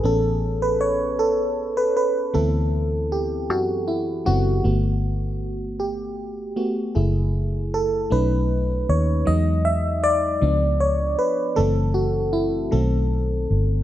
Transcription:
<<
  \new Staff \with { instrumentName = "FM electric piano" } { \time 6/8 \key a \mixolydian \tempo 4. = 52 a'8. b'16 cis''8 a'8. b'16 b'8 | a'4 g'8 fis'8 e'8 fis'8~ | fis'4. g'4 r8 | r4 a'8 b'4 cis''8 |
dis''8 e''8 d''4 cis''8 b'8 | a'8 fis'8 e'8 a'8 r4 | }
  \new Staff \with { instrumentName = "FM electric piano" } { \time 6/8 \key a \mixolydian <b cis' gis'>2. | <e b c' e'>2~ <e b c' e'>8 <fis b c' e'>8 | <a b fis'>8 r2 <a b fis'>8 | <a e' gis'>4. <a cis' dis'>4. |
<fis gis dis'>8 r4 <eis b d'>4. | <e a c'>8 r4 <dis a c'>4. | }
  \new Staff \with { instrumentName = "Fingered electric bass" } { \clef bass \time 6/8 \key a \mixolydian a,,2. | d,4. fis,4 fis,,8 | g,,2. | fis,,4. b,,4 dis,8 |
e,4. cis,4 r8 | fis,,4. b,,4 g,,8 | }
>>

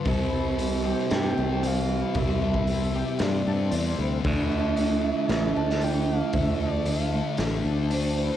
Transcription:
<<
  \new Staff \with { instrumentName = "Soft synth lead" } { \time 4/4 \key c \major \tempo 4 = 115 c''2 g''4 f''4 | e''2 d''4. r8 | r4. e''8 e''8 a''8 g''8 f''8 | e''8 d''8 f''4 r4 c''4 | }
  \new Staff \with { instrumentName = "Twelve-string acoustic guitar" } { \time 4/4 \key c \major e8 a8 c'8 g'8 c'8 a8 c'8 e8 | e8 a8 c'8 g'8 c'8 a8 c'8 e8 | r8 a8 d'4 d'8 a8 d'4~ | d'8 a8 d'4 d'8 a8 d'8 e8 | }
  \new Staff \with { instrumentName = "Distorted electric guitar" } { \time 4/4 \key c \major <c g c'>4 <c g c'>8 <g c'>8 <c g c'>4 <c g c'>4 | <c g c'>4 <c g c'>8 <g c'>8 <c g c'>4 <c g c'>4 | <d a d'>4 <d a d'>8 <a d'>8 <d a d'>4 <d a d'>4 | <d a d'>4 <d a d'>8 <a d'>8 <d a d'>4 <d a d'>4 | }
  \new Staff \with { instrumentName = "Clean electric guitar" } { \clef bass \time 4/4 \key c \major <c e g e' a'>1~ | <c e g e' a'>1 | <d f a d' e'>1~ | <d f a d' e'>1 | }
  \new Staff \with { instrumentName = "Fingered electric bass" } { \clef bass \time 4/4 \key c \major c,2 g,8 c,4. | c,2 g,8 g,8 e,8 d,8 | d,2 a,,8 d,4. | d,2 a,,8 d,4. | }
  \new DrumStaff \with { instrumentName = "Drums" } \drummode { \time 4/4 <hho bd>4 hho4 <hho sn>4 hho4 | <hho bd>8. bd16 hho4 <hho sn>4 hho4 | <hho bd>4 hho4 <hho sn>8. sn16 hho4 | <hho bd>4 hho4 <hho sn>4 hho4 | }
>>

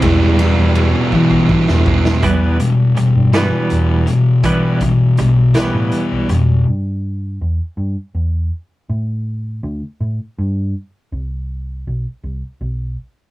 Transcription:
<<
  \new Staff \with { instrumentName = "Distorted electric guitar" } { \time 6/8 \key e \minor \tempo 4. = 54 <e g b e'>8 <e g b e'>4 <e g b e'>8 <e g b e'>8 <e g b e'>8 | r2. | r2. | r2. |
r2. | r2. | }
  \new Staff \with { instrumentName = "Cello" } { \clef bass \time 6/8 \key e \minor g2 r4 | r2. | r2. | r2. |
r2. | r2. | }
  \new Staff \with { instrumentName = "Clean electric guitar" } { \clef bass \time 6/8 \key e \minor r2. | <e g b>8 <e g>8 <e g>8 <e g b>4 <e g>8 | <e g b>8 <e g>8 <e g>8 <e g b>4 <e g>8 | r2. |
r2. | r2. | }
  \new Staff \with { instrumentName = "Distorted electric guitar" } { \clef bass \time 6/8 \key e \minor <e, b, e>8 <e, b, e>4 <e, b, e>8 <e, b, e>8 <e, b, e>8 | <e, b, e>8 <e, b,>8 <e, b,>8 <e, b, e>4 <e, b,>8 | <e, b, e>8 <e, b,>8 <e, b,>8 <e, b, e>4 <e, b,>8 | r2. |
r2. | r2. | }
  \new Staff \with { instrumentName = "Picked electric bass" } { \clef bass \time 6/8 \key e \minor e,8. e,8 r16 e8. e,8. | e,8 r8. g,8 r16 e,8 r8 | e4 b,,8. a,16 r16 b,,16 f,8 | g,4 e,16 r16 g,16 r16 e,8 r8 |
a,4 d,16 r16 a,16 r16 g,8 r8 | c,4 b,,16 r16 c,16 r16 b,,8 r8 | }
  \new DrumStaff \with { instrumentName = "Drums" } \drummode { \time 6/8 <bd cymr>8 cymr8 cymr8 bd16 bd16 bd16 sn16 bd16 sn16 | <hh bd>8 hh8 hh8 <hh sn>8 hh8 hh8 | <hh bd>8 <hh bd>8 hh8 <hh sn>8 hh8 hh8 | r4. r4. |
r4. r4. | r4. r4. | }
>>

